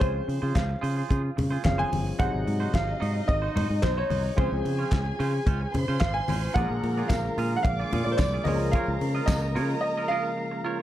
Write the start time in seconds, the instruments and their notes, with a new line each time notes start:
Already playing: clav F3 C4 C#4 G#4
0.00 fingered electric bass C#2, clean electric guitar F4 G#4 C5, grand piano C5, kick, closed hi-hat, muted conga
0.15 muted clean electric guitar stroke
0.28 fingered electric bass C#3, muted clean electric guitar stroke, open hi-hat
0.42 fingered electric bass C#3, clean electric guitar F4 G#4 C5
0.55 fingered electric bass C#2, grand piano F5, muted clean electric guitar stroke, kick, snare, clap, closed hi-hat, high conga
0.69 muted clean electric guitar stroke
0.81 fingered electric bass C#3, clean electric guitar F4 G#4 C5, open hi-hat
0.97 clean electric guitar F4 G#4 C5
1.09 fingered electric bass C#3, clean electric guitar F4 G#4 C5, kick, closed hi-hat, muted conga
1.24 muted clean electric guitar stroke
1.36 fingered electric bass C#3, muted clean electric guitar stroke, open hi-hat, muted conga, low conga
1.50 clean electric guitar F4 G#4 C5
1.64 fingered electric bass F#1, clav D#3 C4 C#4 G#4, grand piano F5, muted clean electric guitar stroke, kick, snare, clap, closed hi-hat, high conga
1.71 clav F3
1.78 clean electric guitar F4 G#4 C5, grand piano G#5, high conga
1.92 fingered electric bass G1, muted clean electric guitar stroke, open hi-hat, high conga
2.07 muted clean electric guitar stroke
2.19 fingered electric bass G#1, clav C3 F#3 D#4 G#4, clean electric guitar D#4 F#4 C5, violin section D#4 D#5, grand piano F#5, kick, closed hi-hat, muted conga
2.33 fingered electric bass G#1, muted clean electric guitar stroke
2.47 fingered electric bass G#2, muted clean electric guitar stroke, open hi-hat, muted conga
2.60 clean electric guitar D#4 F#4 C5
2.74 fingered electric bass G#1, grand piano F5, kick, snare, clap, closed hi-hat, high conga
2.88 muted clean electric guitar stroke
3.00 fingered electric bass G#2, clean electric guitar D#4 F#4 D#5, open hi-hat
3.15 muted clean electric guitar stroke
3.27 fingered electric bass G#1, grand piano D#5, muted clean electric guitar stroke, kick, closed hi-hat, muted conga
3.42 clean electric guitar D#4 F#4 C5
3.55 fingered electric bass G#2, clean electric guitar D#4 F#4 C5, open hi-hat, muted conga, low conga
3.70 fingered electric bass G#2, muted clean electric guitar stroke
3.82 fingered electric bass B1, grand piano C5, muted clean electric guitar stroke, kick, snare, clap, closed hi-hat, high conga
3.97 clean electric guitar D#4 F#4 C5, grand piano C#5
4.10 fingered electric bass C2, clean electric guitar D#4 F#4 C5, open hi-hat, high conga
4.24 muted clean electric guitar stroke
4.36 fingered electric bass C#2, clav F3 C4 C#4 G#4, clean electric guitar C#4 F4 C5, violin section G#4 G#5, grand piano C5, kick, closed hi-hat, muted conga
4.51 fingered electric bass C#2, muted clean electric guitar stroke
4.64 fingered electric bass C#3, muted clean electric guitar stroke, open hi-hat, muted conga
4.79 clean electric guitar C#4 F4 C#5
4.92 fingered electric bass C#2, kick, snare, clap, closed hi-hat, high conga
5.06 muted clean electric guitar stroke
5.19 fingered electric bass C#3, clean electric guitar C#4 F4 C5, open hi-hat
5.34 muted clean electric guitar stroke
5.46 fingered electric bass C#2, clean electric guitar C#4 F4 C5, kick, closed hi-hat, muted conga
5.62 muted clean electric guitar stroke
5.74 fingered electric bass C#3, violin section C5 C6, muted clean electric guitar stroke, open hi-hat, muted conga, low conga
5.88 fingered electric bass C#3, clean electric guitar C#4 F4 C5
6.00 fingered electric bass G#1, grand piano F5, kick, snare, clap, closed hi-hat, high conga
6.14 grand piano G#5, muted clean electric guitar stroke
6.28 fingered electric bass A1, clean electric guitar C#4 F4 C5, open hi-hat, high conga
6.44 clean electric guitar C#4 F4 C5
6.54 fingered electric bass A#1, tonewheel organ D3 F3 G#3 A#3, clav F3 A#3 C#4 G#4, clean electric guitar F4 G#4 D5, violin section A#4 A#5, grand piano F#5, kick, closed hi-hat, muted conga
6.63 clav D4
6.70 fingered electric bass A#1, muted clean electric guitar stroke
6.83 fingered electric bass A#2, muted clean electric guitar stroke, open hi-hat, muted conga
6.98 clean electric guitar F4 G#4 D5
7.08 fingered electric bass A#1, grand piano F5, kick, snare, clap, tambourine, high conga
7.25 muted clean electric guitar stroke
7.38 fingered electric bass A#2, clean electric guitar F4 G#4 F5, open hi-hat
7.53 grand piano F#5, muted clean electric guitar stroke
7.63 fingered electric bass A#1, violin section D5 D6, grand piano F5, muted clean electric guitar stroke, kick, closed hi-hat, muted conga
7.80 clean electric guitar F4 G#4 D5
7.92 fingered electric bass A#2, clean electric guitar F4 G#4 D5, open hi-hat, muted conga, low conga
8.04 fingered electric bass A#2, grand piano D5, muted clean electric guitar stroke
8.12 grand piano C5
8.17 fingered electric bass C2, grand piano D5, muted clean electric guitar stroke, kick, snare, clap, closed hi-hat, tambourine, high conga
8.34 clean electric guitar F4 G#4 D5
8.44 fingered electric bass C#2, tonewheel organ C#3 G#3, clav F3 A#3 C#4, clean electric guitar F4 A#4 C#5, violin section A#4 A#5, grand piano D#5, open hi-hat, high conga
8.48 clav G#4
8.61 muted clean electric guitar stroke
8.72 clean electric guitar F4 A#4 C#5, grand piano F5, kick, closed hi-hat, muted conga
8.88 fingered electric bass C#2, muted clean electric guitar stroke
9.01 fingered electric bass C#3, muted clean electric guitar stroke, open hi-hat, muted conga
9.15 clean electric guitar F4 A#4 D#5
9.26 fingered electric bass C#2, grand piano D#5, kick, snare, clap, tambourine, high conga
9.43 muted clean electric guitar stroke
9.55 fingered electric bass C#3, clean electric guitar F4 A#4 C#5, open hi-hat
9.70 muted clean electric guitar stroke
9.81 grand piano D#5, muted clean electric guitar stroke
9.97 clean electric guitar F4 A#4 D#5
10.08 clean electric guitar F4 A#4 D#5, grand piano F5
10.25 muted clean electric guitar stroke
10.37 muted clean electric guitar stroke
10.51 muted clean electric guitar stroke
10.64 clean electric guitar F4 A#4 C#5
10.79 clean electric guitar C#5